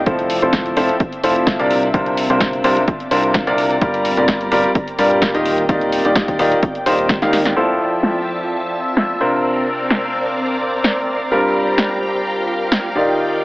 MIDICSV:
0, 0, Header, 1, 6, 480
1, 0, Start_track
1, 0, Key_signature, -1, "major"
1, 0, Tempo, 468750
1, 68, Time_signature, 4, 2, 24, 8
1, 13767, End_track
2, 0, Start_track
2, 0, Title_t, "Ambient pad"
2, 0, Program_c, 0, 92
2, 0, Note_on_c, 0, 60, 65
2, 0, Note_on_c, 0, 74, 71
2, 0, Note_on_c, 0, 79, 78
2, 200, Note_on_c, 0, 76, 76
2, 677, Note_on_c, 0, 81, 83
2, 742, Note_off_c, 0, 74, 0
2, 742, Note_off_c, 0, 79, 0
2, 1746, Note_off_c, 0, 81, 0
2, 2233, Note_on_c, 0, 74, 79
2, 2617, Note_off_c, 0, 76, 0
2, 2719, Note_on_c, 0, 82, 72
2, 4425, Note_on_c, 0, 70, 91
2, 4581, Note_off_c, 0, 82, 0
2, 4583, Note_off_c, 0, 74, 0
2, 4667, Note_on_c, 0, 79, 86
2, 5878, Note_on_c, 0, 74, 66
2, 6456, Note_off_c, 0, 70, 0
2, 7824, Note_on_c, 0, 88, 65
2, 7956, Note_on_c, 0, 81, 78
2, 8423, Note_off_c, 0, 74, 0
2, 8423, Note_off_c, 0, 79, 0
2, 9427, Note_off_c, 0, 81, 0
2, 9633, Note_on_c, 0, 72, 85
2, 9757, Note_on_c, 0, 74, 73
2, 10234, Note_off_c, 0, 88, 0
2, 10256, Note_on_c, 0, 82, 82
2, 11588, Note_off_c, 0, 60, 0
2, 11590, Note_on_c, 0, 65, 69
2, 11762, Note_on_c, 0, 70, 78
2, 11799, Note_on_c, 0, 79, 75
2, 12262, Note_off_c, 0, 72, 0
2, 12262, Note_off_c, 0, 74, 0
2, 12262, Note_off_c, 0, 82, 0
2, 13271, Note_on_c, 0, 63, 69
2, 13502, Note_on_c, 0, 77, 66
2, 13558, Note_on_c, 0, 74, 71
2, 13767, Note_off_c, 0, 63, 0
2, 13767, Note_off_c, 0, 65, 0
2, 13767, Note_off_c, 0, 70, 0
2, 13767, Note_off_c, 0, 74, 0
2, 13767, Note_off_c, 0, 77, 0
2, 13767, Note_off_c, 0, 79, 0
2, 13767, End_track
3, 0, Start_track
3, 0, Title_t, "String machine"
3, 0, Program_c, 1, 50
3, 7746, Note_on_c, 1, 53, 74
3, 7746, Note_on_c, 1, 76, 75
3, 7747, Note_on_c, 1, 81, 84
3, 9410, Note_off_c, 1, 53, 0
3, 9410, Note_off_c, 1, 76, 0
3, 9410, Note_off_c, 1, 81, 0
3, 9426, Note_on_c, 1, 60, 81
3, 9426, Note_on_c, 1, 70, 73
3, 9427, Note_on_c, 1, 74, 75
3, 9427, Note_on_c, 1, 77, 92
3, 11565, Note_off_c, 1, 60, 0
3, 11565, Note_off_c, 1, 70, 0
3, 11565, Note_off_c, 1, 74, 0
3, 11587, Note_on_c, 1, 67, 78
3, 11589, Note_on_c, 1, 82, 87
3, 13251, Note_off_c, 1, 67, 0
3, 13251, Note_off_c, 1, 82, 0
3, 13266, Note_on_c, 1, 63, 81
3, 13266, Note_on_c, 1, 74, 75
3, 13266, Note_on_c, 1, 79, 88
3, 13767, Note_off_c, 1, 63, 0
3, 13767, Note_off_c, 1, 74, 0
3, 13767, Note_off_c, 1, 77, 0
3, 13767, Note_off_c, 1, 79, 0
3, 13767, End_track
4, 0, Start_track
4, 0, Title_t, "Grand piano"
4, 0, Program_c, 2, 0
4, 65, Note_on_c, 2, 53, 77
4, 66, Note_on_c, 2, 64, 67
4, 66, Note_on_c, 2, 65, 71
4, 66, Note_on_c, 2, 69, 68
4, 66, Note_on_c, 2, 72, 85
4, 403, Note_off_c, 2, 53, 0
4, 403, Note_off_c, 2, 64, 0
4, 403, Note_off_c, 2, 65, 0
4, 403, Note_off_c, 2, 69, 0
4, 403, Note_off_c, 2, 72, 0
4, 432, Note_on_c, 2, 65, 67
4, 433, Note_on_c, 2, 53, 77
4, 433, Note_on_c, 2, 64, 64
4, 433, Note_on_c, 2, 69, 69
4, 433, Note_on_c, 2, 72, 80
4, 759, Note_off_c, 2, 64, 0
4, 759, Note_off_c, 2, 65, 0
4, 759, Note_off_c, 2, 72, 0
4, 760, Note_off_c, 2, 53, 0
4, 760, Note_off_c, 2, 69, 0
4, 785, Note_on_c, 2, 53, 96
4, 786, Note_on_c, 2, 64, 91
4, 786, Note_on_c, 2, 65, 90
4, 786, Note_on_c, 2, 69, 90
4, 786, Note_on_c, 2, 72, 113
4, 958, Note_off_c, 2, 53, 0
4, 958, Note_off_c, 2, 64, 0
4, 958, Note_off_c, 2, 65, 0
4, 958, Note_off_c, 2, 69, 0
4, 958, Note_off_c, 2, 72, 0
4, 1265, Note_on_c, 2, 65, 78
4, 1266, Note_on_c, 2, 53, 86
4, 1266, Note_on_c, 2, 64, 81
4, 1266, Note_on_c, 2, 69, 77
4, 1266, Note_on_c, 2, 72, 97
4, 1603, Note_off_c, 2, 53, 0
4, 1603, Note_off_c, 2, 64, 0
4, 1603, Note_off_c, 2, 65, 0
4, 1603, Note_off_c, 2, 69, 0
4, 1603, Note_off_c, 2, 72, 0
4, 1633, Note_on_c, 2, 48, 92
4, 1633, Note_on_c, 2, 62, 87
4, 1633, Note_on_c, 2, 65, 84
4, 1633, Note_on_c, 2, 70, 86
4, 1633, Note_on_c, 2, 74, 102
4, 1900, Note_off_c, 2, 48, 0
4, 1900, Note_off_c, 2, 62, 0
4, 1900, Note_off_c, 2, 65, 0
4, 1900, Note_off_c, 2, 70, 0
4, 1900, Note_off_c, 2, 74, 0
4, 1986, Note_on_c, 2, 48, 78
4, 1986, Note_on_c, 2, 62, 75
4, 1986, Note_on_c, 2, 65, 72
4, 1986, Note_on_c, 2, 70, 73
4, 1987, Note_on_c, 2, 72, 82
4, 2323, Note_off_c, 2, 48, 0
4, 2323, Note_off_c, 2, 62, 0
4, 2323, Note_off_c, 2, 70, 0
4, 2324, Note_off_c, 2, 65, 0
4, 2324, Note_off_c, 2, 72, 0
4, 2354, Note_on_c, 2, 48, 73
4, 2354, Note_on_c, 2, 62, 67
4, 2354, Note_on_c, 2, 65, 65
4, 2354, Note_on_c, 2, 70, 65
4, 2354, Note_on_c, 2, 72, 85
4, 2680, Note_off_c, 2, 48, 0
4, 2680, Note_off_c, 2, 62, 0
4, 2680, Note_off_c, 2, 65, 0
4, 2680, Note_off_c, 2, 70, 0
4, 2680, Note_off_c, 2, 72, 0
4, 2706, Note_on_c, 2, 65, 92
4, 2706, Note_on_c, 2, 72, 108
4, 2707, Note_on_c, 2, 48, 102
4, 2707, Note_on_c, 2, 62, 95
4, 2707, Note_on_c, 2, 70, 91
4, 2878, Note_off_c, 2, 72, 0
4, 2879, Note_off_c, 2, 48, 0
4, 2879, Note_off_c, 2, 62, 0
4, 2879, Note_off_c, 2, 65, 0
4, 2879, Note_off_c, 2, 70, 0
4, 3186, Note_on_c, 2, 48, 83
4, 3186, Note_on_c, 2, 62, 82
4, 3186, Note_on_c, 2, 65, 77
4, 3186, Note_on_c, 2, 70, 77
4, 3186, Note_on_c, 2, 72, 94
4, 3523, Note_off_c, 2, 48, 0
4, 3523, Note_off_c, 2, 62, 0
4, 3523, Note_off_c, 2, 65, 0
4, 3523, Note_off_c, 2, 70, 0
4, 3523, Note_off_c, 2, 72, 0
4, 3554, Note_on_c, 2, 48, 93
4, 3554, Note_on_c, 2, 62, 85
4, 3554, Note_on_c, 2, 70, 86
4, 3554, Note_on_c, 2, 74, 105
4, 3555, Note_on_c, 2, 65, 88
4, 3820, Note_off_c, 2, 48, 0
4, 3820, Note_off_c, 2, 70, 0
4, 3821, Note_off_c, 2, 62, 0
4, 3821, Note_off_c, 2, 65, 0
4, 3821, Note_off_c, 2, 74, 0
4, 3906, Note_on_c, 2, 55, 79
4, 3906, Note_on_c, 2, 65, 75
4, 3906, Note_on_c, 2, 67, 71
4, 3906, Note_on_c, 2, 70, 71
4, 3906, Note_on_c, 2, 74, 87
4, 4243, Note_off_c, 2, 55, 0
4, 4243, Note_off_c, 2, 65, 0
4, 4243, Note_off_c, 2, 67, 0
4, 4243, Note_off_c, 2, 74, 0
4, 4244, Note_off_c, 2, 70, 0
4, 4273, Note_on_c, 2, 55, 75
4, 4273, Note_on_c, 2, 65, 65
4, 4273, Note_on_c, 2, 67, 64
4, 4273, Note_on_c, 2, 70, 69
4, 4273, Note_on_c, 2, 74, 82
4, 4600, Note_off_c, 2, 55, 0
4, 4600, Note_off_c, 2, 65, 0
4, 4600, Note_off_c, 2, 67, 0
4, 4600, Note_off_c, 2, 70, 0
4, 4600, Note_off_c, 2, 74, 0
4, 4625, Note_on_c, 2, 55, 103
4, 4626, Note_on_c, 2, 65, 90
4, 4626, Note_on_c, 2, 67, 94
4, 4626, Note_on_c, 2, 70, 96
4, 4626, Note_on_c, 2, 74, 110
4, 4798, Note_off_c, 2, 55, 0
4, 4798, Note_off_c, 2, 65, 0
4, 4798, Note_off_c, 2, 67, 0
4, 4798, Note_off_c, 2, 70, 0
4, 4798, Note_off_c, 2, 74, 0
4, 5106, Note_on_c, 2, 55, 90
4, 5106, Note_on_c, 2, 65, 76
4, 5106, Note_on_c, 2, 67, 81
4, 5106, Note_on_c, 2, 70, 78
4, 5106, Note_on_c, 2, 74, 97
4, 5443, Note_off_c, 2, 55, 0
4, 5443, Note_off_c, 2, 65, 0
4, 5443, Note_off_c, 2, 67, 0
4, 5443, Note_off_c, 2, 70, 0
4, 5443, Note_off_c, 2, 74, 0
4, 5473, Note_on_c, 2, 51, 93
4, 5473, Note_on_c, 2, 63, 87
4, 5473, Note_on_c, 2, 65, 85
4, 5474, Note_on_c, 2, 67, 89
4, 5474, Note_on_c, 2, 75, 106
4, 5740, Note_off_c, 2, 51, 0
4, 5740, Note_off_c, 2, 63, 0
4, 5740, Note_off_c, 2, 65, 0
4, 5740, Note_off_c, 2, 67, 0
4, 5740, Note_off_c, 2, 75, 0
4, 5826, Note_on_c, 2, 51, 82
4, 5826, Note_on_c, 2, 63, 73
4, 5826, Note_on_c, 2, 65, 72
4, 5826, Note_on_c, 2, 67, 73
4, 5826, Note_on_c, 2, 74, 85
4, 6164, Note_off_c, 2, 51, 0
4, 6164, Note_off_c, 2, 63, 0
4, 6164, Note_off_c, 2, 65, 0
4, 6164, Note_off_c, 2, 67, 0
4, 6164, Note_off_c, 2, 74, 0
4, 6194, Note_on_c, 2, 51, 75
4, 6194, Note_on_c, 2, 63, 66
4, 6194, Note_on_c, 2, 65, 69
4, 6194, Note_on_c, 2, 67, 67
4, 6194, Note_on_c, 2, 74, 84
4, 6520, Note_off_c, 2, 51, 0
4, 6520, Note_off_c, 2, 63, 0
4, 6520, Note_off_c, 2, 65, 0
4, 6520, Note_off_c, 2, 67, 0
4, 6520, Note_off_c, 2, 74, 0
4, 6546, Note_on_c, 2, 51, 102
4, 6546, Note_on_c, 2, 63, 88
4, 6546, Note_on_c, 2, 65, 90
4, 6546, Note_on_c, 2, 67, 87
4, 6546, Note_on_c, 2, 74, 105
4, 6718, Note_off_c, 2, 51, 0
4, 6718, Note_off_c, 2, 63, 0
4, 6718, Note_off_c, 2, 65, 0
4, 6718, Note_off_c, 2, 67, 0
4, 6718, Note_off_c, 2, 74, 0
4, 7026, Note_on_c, 2, 51, 89
4, 7026, Note_on_c, 2, 65, 80
4, 7026, Note_on_c, 2, 67, 82
4, 7027, Note_on_c, 2, 63, 82
4, 7027, Note_on_c, 2, 72, 101
4, 7296, Note_off_c, 2, 51, 0
4, 7296, Note_off_c, 2, 63, 0
4, 7296, Note_off_c, 2, 65, 0
4, 7296, Note_off_c, 2, 67, 0
4, 7296, Note_off_c, 2, 72, 0
4, 7394, Note_on_c, 2, 51, 81
4, 7394, Note_on_c, 2, 63, 75
4, 7394, Note_on_c, 2, 65, 72
4, 7394, Note_on_c, 2, 67, 72
4, 7394, Note_on_c, 2, 77, 89
4, 7557, Note_off_c, 2, 51, 0
4, 7557, Note_off_c, 2, 63, 0
4, 7557, Note_off_c, 2, 65, 0
4, 7557, Note_off_c, 2, 67, 0
4, 7557, Note_off_c, 2, 77, 0
4, 7746, Note_on_c, 2, 72, 80
4, 7747, Note_on_c, 2, 53, 74
4, 7747, Note_on_c, 2, 64, 67
4, 7747, Note_on_c, 2, 65, 66
4, 7747, Note_on_c, 2, 69, 65
4, 9400, Note_off_c, 2, 53, 0
4, 9400, Note_off_c, 2, 64, 0
4, 9400, Note_off_c, 2, 65, 0
4, 9400, Note_off_c, 2, 69, 0
4, 9400, Note_off_c, 2, 72, 0
4, 9427, Note_on_c, 2, 48, 70
4, 9427, Note_on_c, 2, 62, 65
4, 9427, Note_on_c, 2, 65, 65
4, 9427, Note_on_c, 2, 70, 66
4, 9427, Note_on_c, 2, 72, 80
4, 11560, Note_off_c, 2, 48, 0
4, 11560, Note_off_c, 2, 62, 0
4, 11560, Note_off_c, 2, 65, 0
4, 11560, Note_off_c, 2, 70, 0
4, 11560, Note_off_c, 2, 72, 0
4, 11587, Note_on_c, 2, 62, 69
4, 11587, Note_on_c, 2, 67, 72
4, 11588, Note_on_c, 2, 55, 74
4, 11588, Note_on_c, 2, 65, 67
4, 11588, Note_on_c, 2, 70, 84
4, 13240, Note_off_c, 2, 55, 0
4, 13240, Note_off_c, 2, 62, 0
4, 13240, Note_off_c, 2, 65, 0
4, 13240, Note_off_c, 2, 67, 0
4, 13240, Note_off_c, 2, 70, 0
4, 13266, Note_on_c, 2, 51, 74
4, 13266, Note_on_c, 2, 63, 69
4, 13266, Note_on_c, 2, 65, 70
4, 13266, Note_on_c, 2, 67, 69
4, 13266, Note_on_c, 2, 74, 81
4, 13767, Note_off_c, 2, 51, 0
4, 13767, Note_off_c, 2, 63, 0
4, 13767, Note_off_c, 2, 65, 0
4, 13767, Note_off_c, 2, 67, 0
4, 13767, Note_off_c, 2, 74, 0
4, 13767, End_track
5, 0, Start_track
5, 0, Title_t, "Analog synth bass"
5, 0, Program_c, 3, 38
5, 67, Note_on_c, 3, 29, 101
5, 409, Note_off_c, 3, 29, 0
5, 434, Note_on_c, 3, 29, 95
5, 764, Note_off_c, 3, 29, 0
5, 786, Note_on_c, 3, 29, 94
5, 936, Note_off_c, 3, 29, 0
5, 1265, Note_on_c, 3, 29, 98
5, 1608, Note_off_c, 3, 29, 0
5, 1634, Note_on_c, 3, 36, 97
5, 1964, Note_off_c, 3, 36, 0
5, 1987, Note_on_c, 3, 36, 93
5, 2329, Note_off_c, 3, 36, 0
5, 2354, Note_on_c, 3, 36, 92
5, 2685, Note_off_c, 3, 36, 0
5, 2708, Note_on_c, 3, 36, 97
5, 2857, Note_off_c, 3, 36, 0
5, 3187, Note_on_c, 3, 36, 100
5, 3529, Note_off_c, 3, 36, 0
5, 3554, Note_on_c, 3, 36, 94
5, 3885, Note_off_c, 3, 36, 0
5, 3907, Note_on_c, 3, 31, 94
5, 4249, Note_off_c, 3, 31, 0
5, 4275, Note_on_c, 3, 31, 96
5, 4605, Note_off_c, 3, 31, 0
5, 4628, Note_on_c, 3, 31, 97
5, 4777, Note_off_c, 3, 31, 0
5, 5108, Note_on_c, 3, 43, 96
5, 5449, Note_off_c, 3, 43, 0
5, 5475, Note_on_c, 3, 27, 102
5, 5805, Note_off_c, 3, 27, 0
5, 5827, Note_on_c, 3, 27, 92
5, 6169, Note_off_c, 3, 27, 0
5, 6196, Note_on_c, 3, 27, 95
5, 6525, Note_off_c, 3, 27, 0
5, 6549, Note_on_c, 3, 27, 94
5, 6697, Note_off_c, 3, 27, 0
5, 7028, Note_on_c, 3, 27, 98
5, 7370, Note_off_c, 3, 27, 0
5, 7396, Note_on_c, 3, 39, 98
5, 7725, Note_off_c, 3, 39, 0
5, 13767, End_track
6, 0, Start_track
6, 0, Title_t, "Drums"
6, 65, Note_on_c, 9, 42, 66
6, 66, Note_on_c, 9, 36, 121
6, 167, Note_off_c, 9, 42, 0
6, 169, Note_off_c, 9, 36, 0
6, 193, Note_on_c, 9, 42, 37
6, 295, Note_off_c, 9, 42, 0
6, 305, Note_on_c, 9, 46, 114
6, 407, Note_off_c, 9, 46, 0
6, 432, Note_on_c, 9, 42, 40
6, 535, Note_off_c, 9, 42, 0
6, 540, Note_on_c, 9, 38, 111
6, 544, Note_on_c, 9, 42, 61
6, 546, Note_on_c, 9, 36, 116
6, 643, Note_off_c, 9, 38, 0
6, 647, Note_off_c, 9, 42, 0
6, 649, Note_off_c, 9, 36, 0
6, 673, Note_on_c, 9, 42, 37
6, 775, Note_off_c, 9, 42, 0
6, 785, Note_on_c, 9, 46, 107
6, 887, Note_off_c, 9, 46, 0
6, 913, Note_on_c, 9, 42, 37
6, 1016, Note_off_c, 9, 42, 0
6, 1025, Note_on_c, 9, 42, 63
6, 1026, Note_on_c, 9, 36, 118
6, 1127, Note_off_c, 9, 42, 0
6, 1128, Note_off_c, 9, 36, 0
6, 1153, Note_on_c, 9, 42, 36
6, 1255, Note_off_c, 9, 42, 0
6, 1265, Note_on_c, 9, 46, 104
6, 1368, Note_off_c, 9, 46, 0
6, 1394, Note_on_c, 9, 42, 38
6, 1497, Note_off_c, 9, 42, 0
6, 1503, Note_on_c, 9, 38, 117
6, 1506, Note_on_c, 9, 36, 125
6, 1507, Note_on_c, 9, 42, 64
6, 1606, Note_off_c, 9, 38, 0
6, 1608, Note_off_c, 9, 36, 0
6, 1610, Note_off_c, 9, 42, 0
6, 1634, Note_on_c, 9, 42, 38
6, 1736, Note_off_c, 9, 42, 0
6, 1747, Note_on_c, 9, 46, 108
6, 1849, Note_off_c, 9, 46, 0
6, 1875, Note_on_c, 9, 42, 38
6, 1977, Note_off_c, 9, 42, 0
6, 1986, Note_on_c, 9, 36, 118
6, 1987, Note_on_c, 9, 42, 65
6, 2089, Note_off_c, 9, 36, 0
6, 2090, Note_off_c, 9, 42, 0
6, 2113, Note_on_c, 9, 42, 38
6, 2216, Note_off_c, 9, 42, 0
6, 2226, Note_on_c, 9, 46, 110
6, 2329, Note_off_c, 9, 46, 0
6, 2354, Note_on_c, 9, 42, 40
6, 2457, Note_off_c, 9, 42, 0
6, 2462, Note_on_c, 9, 38, 110
6, 2466, Note_on_c, 9, 36, 114
6, 2466, Note_on_c, 9, 42, 63
6, 2564, Note_off_c, 9, 38, 0
6, 2568, Note_off_c, 9, 42, 0
6, 2569, Note_off_c, 9, 36, 0
6, 2594, Note_on_c, 9, 42, 41
6, 2696, Note_off_c, 9, 42, 0
6, 2705, Note_on_c, 9, 46, 102
6, 2808, Note_off_c, 9, 46, 0
6, 2834, Note_on_c, 9, 42, 41
6, 2936, Note_off_c, 9, 42, 0
6, 2947, Note_on_c, 9, 36, 109
6, 2947, Note_on_c, 9, 42, 65
6, 3049, Note_off_c, 9, 36, 0
6, 3049, Note_off_c, 9, 42, 0
6, 3074, Note_on_c, 9, 42, 40
6, 3177, Note_off_c, 9, 42, 0
6, 3186, Note_on_c, 9, 46, 100
6, 3289, Note_off_c, 9, 46, 0
6, 3313, Note_on_c, 9, 42, 38
6, 3415, Note_off_c, 9, 42, 0
6, 3423, Note_on_c, 9, 38, 113
6, 3427, Note_on_c, 9, 36, 114
6, 3427, Note_on_c, 9, 42, 70
6, 3525, Note_off_c, 9, 38, 0
6, 3529, Note_off_c, 9, 36, 0
6, 3529, Note_off_c, 9, 42, 0
6, 3555, Note_on_c, 9, 42, 39
6, 3657, Note_off_c, 9, 42, 0
6, 3667, Note_on_c, 9, 46, 104
6, 3769, Note_off_c, 9, 46, 0
6, 3794, Note_on_c, 9, 42, 42
6, 3897, Note_off_c, 9, 42, 0
6, 3906, Note_on_c, 9, 42, 72
6, 3907, Note_on_c, 9, 36, 120
6, 4009, Note_off_c, 9, 36, 0
6, 4009, Note_off_c, 9, 42, 0
6, 4034, Note_on_c, 9, 42, 40
6, 4137, Note_off_c, 9, 42, 0
6, 4146, Note_on_c, 9, 46, 102
6, 4249, Note_off_c, 9, 46, 0
6, 4273, Note_on_c, 9, 42, 42
6, 4375, Note_off_c, 9, 42, 0
6, 4382, Note_on_c, 9, 38, 112
6, 4386, Note_on_c, 9, 42, 67
6, 4387, Note_on_c, 9, 36, 110
6, 4484, Note_off_c, 9, 38, 0
6, 4488, Note_off_c, 9, 42, 0
6, 4489, Note_off_c, 9, 36, 0
6, 4513, Note_on_c, 9, 42, 39
6, 4616, Note_off_c, 9, 42, 0
6, 4625, Note_on_c, 9, 46, 102
6, 4727, Note_off_c, 9, 46, 0
6, 4753, Note_on_c, 9, 42, 41
6, 4856, Note_off_c, 9, 42, 0
6, 4866, Note_on_c, 9, 42, 66
6, 4867, Note_on_c, 9, 36, 109
6, 4969, Note_off_c, 9, 36, 0
6, 4969, Note_off_c, 9, 42, 0
6, 4994, Note_on_c, 9, 42, 40
6, 5096, Note_off_c, 9, 42, 0
6, 5106, Note_on_c, 9, 46, 98
6, 5208, Note_off_c, 9, 46, 0
6, 5234, Note_on_c, 9, 42, 39
6, 5336, Note_off_c, 9, 42, 0
6, 5343, Note_on_c, 9, 38, 119
6, 5347, Note_on_c, 9, 36, 114
6, 5347, Note_on_c, 9, 42, 71
6, 5445, Note_off_c, 9, 38, 0
6, 5449, Note_off_c, 9, 36, 0
6, 5449, Note_off_c, 9, 42, 0
6, 5474, Note_on_c, 9, 42, 41
6, 5576, Note_off_c, 9, 42, 0
6, 5586, Note_on_c, 9, 46, 103
6, 5689, Note_off_c, 9, 46, 0
6, 5714, Note_on_c, 9, 42, 41
6, 5817, Note_off_c, 9, 42, 0
6, 5826, Note_on_c, 9, 36, 115
6, 5827, Note_on_c, 9, 42, 70
6, 5929, Note_off_c, 9, 36, 0
6, 5930, Note_off_c, 9, 42, 0
6, 5954, Note_on_c, 9, 42, 40
6, 6056, Note_off_c, 9, 42, 0
6, 6067, Note_on_c, 9, 46, 106
6, 6169, Note_off_c, 9, 46, 0
6, 6194, Note_on_c, 9, 42, 42
6, 6297, Note_off_c, 9, 42, 0
6, 6303, Note_on_c, 9, 38, 115
6, 6306, Note_on_c, 9, 36, 115
6, 6306, Note_on_c, 9, 42, 67
6, 6405, Note_off_c, 9, 38, 0
6, 6409, Note_off_c, 9, 36, 0
6, 6409, Note_off_c, 9, 42, 0
6, 6433, Note_on_c, 9, 42, 44
6, 6434, Note_on_c, 9, 36, 59
6, 6535, Note_off_c, 9, 42, 0
6, 6536, Note_off_c, 9, 36, 0
6, 6546, Note_on_c, 9, 46, 102
6, 6648, Note_off_c, 9, 46, 0
6, 6673, Note_on_c, 9, 42, 42
6, 6776, Note_off_c, 9, 42, 0
6, 6786, Note_on_c, 9, 36, 115
6, 6786, Note_on_c, 9, 42, 70
6, 6888, Note_off_c, 9, 42, 0
6, 6889, Note_off_c, 9, 36, 0
6, 6914, Note_on_c, 9, 42, 41
6, 7016, Note_off_c, 9, 42, 0
6, 7026, Note_on_c, 9, 46, 103
6, 7129, Note_off_c, 9, 46, 0
6, 7154, Note_on_c, 9, 42, 43
6, 7256, Note_off_c, 9, 42, 0
6, 7263, Note_on_c, 9, 38, 123
6, 7266, Note_on_c, 9, 36, 113
6, 7267, Note_on_c, 9, 42, 69
6, 7365, Note_off_c, 9, 38, 0
6, 7369, Note_off_c, 9, 36, 0
6, 7369, Note_off_c, 9, 42, 0
6, 7394, Note_on_c, 9, 38, 54
6, 7394, Note_on_c, 9, 42, 41
6, 7497, Note_off_c, 9, 38, 0
6, 7497, Note_off_c, 9, 42, 0
6, 7506, Note_on_c, 9, 38, 80
6, 7506, Note_on_c, 9, 46, 109
6, 7609, Note_off_c, 9, 38, 0
6, 7609, Note_off_c, 9, 46, 0
6, 7634, Note_on_c, 9, 38, 82
6, 7634, Note_on_c, 9, 42, 44
6, 7736, Note_off_c, 9, 38, 0
6, 7736, Note_off_c, 9, 42, 0
6, 8222, Note_on_c, 9, 38, 118
6, 8324, Note_off_c, 9, 38, 0
6, 9183, Note_on_c, 9, 38, 120
6, 9285, Note_off_c, 9, 38, 0
6, 10143, Note_on_c, 9, 38, 122
6, 10245, Note_off_c, 9, 38, 0
6, 11103, Note_on_c, 9, 38, 125
6, 11206, Note_off_c, 9, 38, 0
6, 12063, Note_on_c, 9, 38, 116
6, 12165, Note_off_c, 9, 38, 0
6, 13023, Note_on_c, 9, 38, 120
6, 13126, Note_off_c, 9, 38, 0
6, 13767, End_track
0, 0, End_of_file